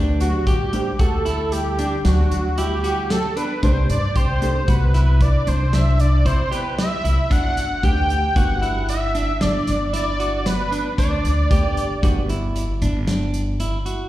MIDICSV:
0, 0, Header, 1, 6, 480
1, 0, Start_track
1, 0, Key_signature, 1, "major"
1, 0, Tempo, 525394
1, 3316, Time_signature, 7, 2, 24, 8
1, 12870, End_track
2, 0, Start_track
2, 0, Title_t, "Analog synth lead"
2, 0, Program_c, 0, 81
2, 187, Note_on_c, 0, 66, 72
2, 430, Note_on_c, 0, 67, 79
2, 444, Note_off_c, 0, 66, 0
2, 914, Note_on_c, 0, 69, 77
2, 928, Note_off_c, 0, 67, 0
2, 1390, Note_on_c, 0, 67, 79
2, 1404, Note_off_c, 0, 69, 0
2, 1875, Note_on_c, 0, 66, 72
2, 1889, Note_off_c, 0, 67, 0
2, 2351, Note_off_c, 0, 66, 0
2, 2357, Note_on_c, 0, 67, 96
2, 2839, Note_on_c, 0, 69, 94
2, 2852, Note_off_c, 0, 67, 0
2, 3077, Note_on_c, 0, 71, 81
2, 3091, Note_off_c, 0, 69, 0
2, 3320, Note_on_c, 0, 72, 88
2, 3333, Note_off_c, 0, 71, 0
2, 3558, Note_off_c, 0, 72, 0
2, 3566, Note_on_c, 0, 74, 85
2, 3804, Note_on_c, 0, 72, 91
2, 3818, Note_off_c, 0, 74, 0
2, 4285, Note_on_c, 0, 71, 84
2, 4299, Note_off_c, 0, 72, 0
2, 4767, Note_on_c, 0, 74, 85
2, 4781, Note_off_c, 0, 71, 0
2, 5007, Note_on_c, 0, 72, 81
2, 5021, Note_off_c, 0, 74, 0
2, 5244, Note_on_c, 0, 76, 88
2, 5258, Note_off_c, 0, 72, 0
2, 5484, Note_on_c, 0, 74, 96
2, 5498, Note_off_c, 0, 76, 0
2, 5718, Note_on_c, 0, 72, 102
2, 5732, Note_off_c, 0, 74, 0
2, 5958, Note_on_c, 0, 71, 89
2, 5971, Note_off_c, 0, 72, 0
2, 6192, Note_off_c, 0, 71, 0
2, 6197, Note_on_c, 0, 76, 102
2, 6686, Note_on_c, 0, 78, 112
2, 6700, Note_off_c, 0, 76, 0
2, 7168, Note_on_c, 0, 79, 100
2, 7181, Note_off_c, 0, 78, 0
2, 7643, Note_on_c, 0, 78, 95
2, 7657, Note_off_c, 0, 79, 0
2, 8120, Note_off_c, 0, 78, 0
2, 8126, Note_on_c, 0, 76, 106
2, 8604, Note_on_c, 0, 74, 88
2, 8618, Note_off_c, 0, 76, 0
2, 9076, Note_off_c, 0, 74, 0
2, 9081, Note_on_c, 0, 74, 101
2, 9558, Note_on_c, 0, 71, 106
2, 9571, Note_off_c, 0, 74, 0
2, 10035, Note_off_c, 0, 71, 0
2, 10039, Note_on_c, 0, 74, 93
2, 11436, Note_off_c, 0, 74, 0
2, 12870, End_track
3, 0, Start_track
3, 0, Title_t, "Hollow-body jazz guitar"
3, 0, Program_c, 1, 26
3, 0, Note_on_c, 1, 57, 61
3, 0, Note_on_c, 1, 62, 56
3, 0, Note_on_c, 1, 67, 60
3, 0, Note_on_c, 1, 71, 75
3, 282, Note_off_c, 1, 57, 0
3, 285, Note_off_c, 1, 62, 0
3, 288, Note_off_c, 1, 67, 0
3, 292, Note_off_c, 1, 71, 0
3, 666, Note_on_c, 1, 57, 55
3, 672, Note_on_c, 1, 62, 51
3, 677, Note_on_c, 1, 67, 54
3, 681, Note_on_c, 1, 72, 57
3, 837, Note_off_c, 1, 57, 0
3, 840, Note_off_c, 1, 62, 0
3, 842, Note_off_c, 1, 67, 0
3, 844, Note_off_c, 1, 72, 0
3, 3312, Note_on_c, 1, 57, 54
3, 3320, Note_on_c, 1, 62, 52
3, 3324, Note_on_c, 1, 67, 51
3, 3330, Note_on_c, 1, 71, 61
3, 3483, Note_off_c, 1, 57, 0
3, 3486, Note_off_c, 1, 62, 0
3, 3488, Note_off_c, 1, 67, 0
3, 3491, Note_off_c, 1, 71, 0
3, 4034, Note_on_c, 1, 57, 57
3, 4038, Note_on_c, 1, 62, 54
3, 4044, Note_on_c, 1, 67, 56
3, 4049, Note_on_c, 1, 69, 64
3, 4204, Note_off_c, 1, 57, 0
3, 4206, Note_off_c, 1, 62, 0
3, 4209, Note_off_c, 1, 67, 0
3, 4212, Note_off_c, 1, 69, 0
3, 7152, Note_on_c, 1, 57, 50
3, 7157, Note_on_c, 1, 62, 50
3, 7163, Note_on_c, 1, 67, 48
3, 7167, Note_on_c, 1, 71, 53
3, 7491, Note_off_c, 1, 57, 0
3, 7493, Note_off_c, 1, 62, 0
3, 7496, Note_off_c, 1, 67, 0
3, 7498, Note_off_c, 1, 71, 0
3, 7636, Note_on_c, 1, 57, 51
3, 7640, Note_on_c, 1, 62, 45
3, 7646, Note_on_c, 1, 67, 42
3, 7652, Note_on_c, 1, 71, 53
3, 7972, Note_off_c, 1, 57, 0
3, 7974, Note_off_c, 1, 62, 0
3, 7977, Note_off_c, 1, 67, 0
3, 7980, Note_off_c, 1, 71, 0
3, 10507, Note_on_c, 1, 57, 52
3, 10511, Note_on_c, 1, 62, 52
3, 10519, Note_on_c, 1, 67, 44
3, 10524, Note_on_c, 1, 71, 55
3, 10975, Note_off_c, 1, 57, 0
3, 10982, Note_off_c, 1, 62, 0
3, 10986, Note_off_c, 1, 67, 0
3, 10986, Note_on_c, 1, 57, 66
3, 10991, Note_off_c, 1, 71, 0
3, 10993, Note_on_c, 1, 62, 60
3, 10997, Note_on_c, 1, 67, 55
3, 11002, Note_on_c, 1, 71, 65
3, 11156, Note_off_c, 1, 57, 0
3, 11160, Note_off_c, 1, 62, 0
3, 11162, Note_off_c, 1, 67, 0
3, 11164, Note_off_c, 1, 71, 0
3, 12870, End_track
4, 0, Start_track
4, 0, Title_t, "Clean electric guitar"
4, 0, Program_c, 2, 27
4, 0, Note_on_c, 2, 62, 82
4, 254, Note_off_c, 2, 62, 0
4, 427, Note_on_c, 2, 67, 76
4, 735, Note_off_c, 2, 67, 0
4, 906, Note_on_c, 2, 66, 70
4, 1061, Note_off_c, 2, 66, 0
4, 1145, Note_on_c, 2, 64, 72
4, 1454, Note_off_c, 2, 64, 0
4, 1635, Note_on_c, 2, 62, 66
4, 1788, Note_off_c, 2, 62, 0
4, 1879, Note_on_c, 2, 62, 68
4, 2184, Note_off_c, 2, 62, 0
4, 2356, Note_on_c, 2, 64, 74
4, 2509, Note_off_c, 2, 64, 0
4, 2592, Note_on_c, 2, 66, 65
4, 2899, Note_off_c, 2, 66, 0
4, 3074, Note_on_c, 2, 62, 64
4, 3228, Note_off_c, 2, 62, 0
4, 3316, Note_on_c, 2, 62, 76
4, 3623, Note_off_c, 2, 62, 0
4, 3798, Note_on_c, 2, 67, 74
4, 4104, Note_off_c, 2, 67, 0
4, 4274, Note_on_c, 2, 66, 62
4, 4429, Note_off_c, 2, 66, 0
4, 4514, Note_on_c, 2, 64, 62
4, 4822, Note_off_c, 2, 64, 0
4, 4996, Note_on_c, 2, 62, 63
4, 5150, Note_off_c, 2, 62, 0
4, 5233, Note_on_c, 2, 62, 58
4, 5541, Note_off_c, 2, 62, 0
4, 5712, Note_on_c, 2, 64, 71
4, 5867, Note_off_c, 2, 64, 0
4, 5950, Note_on_c, 2, 67, 67
4, 6259, Note_off_c, 2, 67, 0
4, 6434, Note_on_c, 2, 64, 66
4, 6589, Note_off_c, 2, 64, 0
4, 6672, Note_on_c, 2, 62, 70
4, 6980, Note_off_c, 2, 62, 0
4, 7158, Note_on_c, 2, 67, 67
4, 7464, Note_off_c, 2, 67, 0
4, 7638, Note_on_c, 2, 66, 66
4, 7790, Note_off_c, 2, 66, 0
4, 7875, Note_on_c, 2, 64, 69
4, 8181, Note_off_c, 2, 64, 0
4, 8357, Note_on_c, 2, 62, 70
4, 8510, Note_off_c, 2, 62, 0
4, 8594, Note_on_c, 2, 62, 70
4, 8900, Note_off_c, 2, 62, 0
4, 9074, Note_on_c, 2, 64, 73
4, 9227, Note_off_c, 2, 64, 0
4, 9316, Note_on_c, 2, 66, 65
4, 9621, Note_off_c, 2, 66, 0
4, 9791, Note_on_c, 2, 62, 70
4, 9945, Note_off_c, 2, 62, 0
4, 10032, Note_on_c, 2, 62, 76
4, 10338, Note_off_c, 2, 62, 0
4, 10514, Note_on_c, 2, 67, 76
4, 10819, Note_off_c, 2, 67, 0
4, 10992, Note_on_c, 2, 66, 66
4, 11144, Note_off_c, 2, 66, 0
4, 11235, Note_on_c, 2, 64, 67
4, 11539, Note_off_c, 2, 64, 0
4, 11713, Note_on_c, 2, 62, 69
4, 11864, Note_off_c, 2, 62, 0
4, 11949, Note_on_c, 2, 62, 64
4, 12254, Note_off_c, 2, 62, 0
4, 12427, Note_on_c, 2, 64, 74
4, 12580, Note_off_c, 2, 64, 0
4, 12660, Note_on_c, 2, 66, 65
4, 12870, Note_off_c, 2, 66, 0
4, 12870, End_track
5, 0, Start_track
5, 0, Title_t, "Upright bass"
5, 0, Program_c, 3, 32
5, 0, Note_on_c, 3, 38, 87
5, 320, Note_off_c, 3, 38, 0
5, 425, Note_on_c, 3, 33, 68
5, 801, Note_off_c, 3, 33, 0
5, 908, Note_on_c, 3, 38, 74
5, 1658, Note_off_c, 3, 38, 0
5, 1873, Note_on_c, 3, 38, 83
5, 2060, Note_off_c, 3, 38, 0
5, 2116, Note_on_c, 3, 38, 69
5, 2863, Note_off_c, 3, 38, 0
5, 3316, Note_on_c, 3, 36, 82
5, 3503, Note_off_c, 3, 36, 0
5, 3562, Note_on_c, 3, 43, 80
5, 3747, Note_off_c, 3, 43, 0
5, 3798, Note_on_c, 3, 36, 66
5, 4171, Note_off_c, 3, 36, 0
5, 4277, Note_on_c, 3, 36, 91
5, 4838, Note_off_c, 3, 36, 0
5, 5000, Note_on_c, 3, 36, 92
5, 5746, Note_off_c, 3, 36, 0
5, 6438, Note_on_c, 3, 36, 87
5, 6531, Note_off_c, 3, 36, 0
5, 6676, Note_on_c, 3, 31, 78
5, 7050, Note_off_c, 3, 31, 0
5, 7158, Note_on_c, 3, 38, 67
5, 7531, Note_off_c, 3, 38, 0
5, 7638, Note_on_c, 3, 31, 83
5, 8383, Note_off_c, 3, 31, 0
5, 8598, Note_on_c, 3, 31, 91
5, 8783, Note_off_c, 3, 31, 0
5, 8839, Note_on_c, 3, 31, 71
5, 9582, Note_off_c, 3, 31, 0
5, 10034, Note_on_c, 3, 38, 80
5, 10220, Note_off_c, 3, 38, 0
5, 10273, Note_on_c, 3, 38, 76
5, 10459, Note_off_c, 3, 38, 0
5, 10514, Note_on_c, 3, 31, 69
5, 10886, Note_off_c, 3, 31, 0
5, 10991, Note_on_c, 3, 31, 93
5, 11550, Note_off_c, 3, 31, 0
5, 11710, Note_on_c, 3, 31, 101
5, 12454, Note_off_c, 3, 31, 0
5, 12870, End_track
6, 0, Start_track
6, 0, Title_t, "Drums"
6, 186, Note_on_c, 9, 42, 55
6, 278, Note_off_c, 9, 42, 0
6, 428, Note_on_c, 9, 36, 89
6, 428, Note_on_c, 9, 42, 68
6, 519, Note_off_c, 9, 36, 0
6, 519, Note_off_c, 9, 42, 0
6, 666, Note_on_c, 9, 42, 55
6, 758, Note_off_c, 9, 42, 0
6, 908, Note_on_c, 9, 42, 74
6, 909, Note_on_c, 9, 36, 97
6, 999, Note_off_c, 9, 42, 0
6, 1000, Note_off_c, 9, 36, 0
6, 1149, Note_on_c, 9, 42, 49
6, 1241, Note_off_c, 9, 42, 0
6, 1389, Note_on_c, 9, 42, 70
6, 1480, Note_off_c, 9, 42, 0
6, 1632, Note_on_c, 9, 42, 55
6, 1723, Note_off_c, 9, 42, 0
6, 1872, Note_on_c, 9, 38, 96
6, 1872, Note_on_c, 9, 42, 82
6, 1963, Note_off_c, 9, 38, 0
6, 1963, Note_off_c, 9, 42, 0
6, 2114, Note_on_c, 9, 42, 59
6, 2206, Note_off_c, 9, 42, 0
6, 2354, Note_on_c, 9, 42, 81
6, 2445, Note_off_c, 9, 42, 0
6, 2596, Note_on_c, 9, 42, 52
6, 2687, Note_off_c, 9, 42, 0
6, 2835, Note_on_c, 9, 38, 95
6, 2835, Note_on_c, 9, 42, 66
6, 2927, Note_off_c, 9, 38, 0
6, 2927, Note_off_c, 9, 42, 0
6, 3076, Note_on_c, 9, 42, 55
6, 3168, Note_off_c, 9, 42, 0
6, 3315, Note_on_c, 9, 42, 69
6, 3316, Note_on_c, 9, 36, 89
6, 3406, Note_off_c, 9, 42, 0
6, 3408, Note_off_c, 9, 36, 0
6, 3559, Note_on_c, 9, 42, 52
6, 3650, Note_off_c, 9, 42, 0
6, 3797, Note_on_c, 9, 36, 93
6, 3798, Note_on_c, 9, 42, 69
6, 3889, Note_off_c, 9, 36, 0
6, 3889, Note_off_c, 9, 42, 0
6, 4037, Note_on_c, 9, 42, 49
6, 4129, Note_off_c, 9, 42, 0
6, 4275, Note_on_c, 9, 42, 70
6, 4277, Note_on_c, 9, 36, 94
6, 4366, Note_off_c, 9, 42, 0
6, 4368, Note_off_c, 9, 36, 0
6, 4515, Note_on_c, 9, 38, 28
6, 4515, Note_on_c, 9, 42, 42
6, 4607, Note_off_c, 9, 38, 0
6, 4607, Note_off_c, 9, 42, 0
6, 4757, Note_on_c, 9, 36, 95
6, 4757, Note_on_c, 9, 42, 64
6, 4848, Note_off_c, 9, 36, 0
6, 4848, Note_off_c, 9, 42, 0
6, 4998, Note_on_c, 9, 42, 54
6, 5089, Note_off_c, 9, 42, 0
6, 5237, Note_on_c, 9, 38, 90
6, 5237, Note_on_c, 9, 42, 79
6, 5328, Note_off_c, 9, 38, 0
6, 5328, Note_off_c, 9, 42, 0
6, 5477, Note_on_c, 9, 42, 57
6, 5568, Note_off_c, 9, 42, 0
6, 5718, Note_on_c, 9, 36, 83
6, 5718, Note_on_c, 9, 42, 72
6, 5809, Note_off_c, 9, 36, 0
6, 5810, Note_off_c, 9, 42, 0
6, 5960, Note_on_c, 9, 42, 51
6, 6051, Note_off_c, 9, 42, 0
6, 6199, Note_on_c, 9, 38, 95
6, 6199, Note_on_c, 9, 42, 76
6, 6291, Note_off_c, 9, 38, 0
6, 6291, Note_off_c, 9, 42, 0
6, 6441, Note_on_c, 9, 42, 56
6, 6532, Note_off_c, 9, 42, 0
6, 6678, Note_on_c, 9, 36, 99
6, 6679, Note_on_c, 9, 42, 76
6, 6769, Note_off_c, 9, 36, 0
6, 6771, Note_off_c, 9, 42, 0
6, 6918, Note_on_c, 9, 42, 53
6, 7009, Note_off_c, 9, 42, 0
6, 7157, Note_on_c, 9, 36, 83
6, 7157, Note_on_c, 9, 42, 64
6, 7248, Note_off_c, 9, 36, 0
6, 7249, Note_off_c, 9, 42, 0
6, 7400, Note_on_c, 9, 42, 43
6, 7492, Note_off_c, 9, 42, 0
6, 7638, Note_on_c, 9, 36, 88
6, 7639, Note_on_c, 9, 42, 72
6, 7729, Note_off_c, 9, 36, 0
6, 7730, Note_off_c, 9, 42, 0
6, 7881, Note_on_c, 9, 42, 47
6, 7972, Note_off_c, 9, 42, 0
6, 8119, Note_on_c, 9, 42, 72
6, 8210, Note_off_c, 9, 42, 0
6, 8358, Note_on_c, 9, 42, 49
6, 8449, Note_off_c, 9, 42, 0
6, 8597, Note_on_c, 9, 38, 96
6, 8597, Note_on_c, 9, 42, 62
6, 8688, Note_off_c, 9, 38, 0
6, 8688, Note_off_c, 9, 42, 0
6, 8838, Note_on_c, 9, 38, 30
6, 8838, Note_on_c, 9, 42, 55
6, 8929, Note_off_c, 9, 38, 0
6, 8929, Note_off_c, 9, 42, 0
6, 9078, Note_on_c, 9, 38, 30
6, 9078, Note_on_c, 9, 42, 80
6, 9169, Note_off_c, 9, 38, 0
6, 9169, Note_off_c, 9, 42, 0
6, 9318, Note_on_c, 9, 42, 46
6, 9410, Note_off_c, 9, 42, 0
6, 9556, Note_on_c, 9, 38, 86
6, 9556, Note_on_c, 9, 42, 73
6, 9647, Note_off_c, 9, 38, 0
6, 9647, Note_off_c, 9, 42, 0
6, 9798, Note_on_c, 9, 42, 54
6, 9889, Note_off_c, 9, 42, 0
6, 10034, Note_on_c, 9, 36, 84
6, 10035, Note_on_c, 9, 42, 79
6, 10125, Note_off_c, 9, 36, 0
6, 10127, Note_off_c, 9, 42, 0
6, 10277, Note_on_c, 9, 42, 61
6, 10368, Note_off_c, 9, 42, 0
6, 10514, Note_on_c, 9, 36, 100
6, 10515, Note_on_c, 9, 42, 73
6, 10605, Note_off_c, 9, 36, 0
6, 10606, Note_off_c, 9, 42, 0
6, 10755, Note_on_c, 9, 42, 54
6, 10846, Note_off_c, 9, 42, 0
6, 10992, Note_on_c, 9, 36, 93
6, 10993, Note_on_c, 9, 42, 79
6, 11083, Note_off_c, 9, 36, 0
6, 11084, Note_off_c, 9, 42, 0
6, 11232, Note_on_c, 9, 42, 53
6, 11323, Note_off_c, 9, 42, 0
6, 11471, Note_on_c, 9, 42, 65
6, 11563, Note_off_c, 9, 42, 0
6, 11710, Note_on_c, 9, 42, 56
6, 11802, Note_off_c, 9, 42, 0
6, 11946, Note_on_c, 9, 38, 95
6, 11946, Note_on_c, 9, 42, 68
6, 12037, Note_off_c, 9, 38, 0
6, 12037, Note_off_c, 9, 42, 0
6, 12186, Note_on_c, 9, 42, 57
6, 12277, Note_off_c, 9, 42, 0
6, 12424, Note_on_c, 9, 42, 65
6, 12515, Note_off_c, 9, 42, 0
6, 12663, Note_on_c, 9, 42, 49
6, 12754, Note_off_c, 9, 42, 0
6, 12870, End_track
0, 0, End_of_file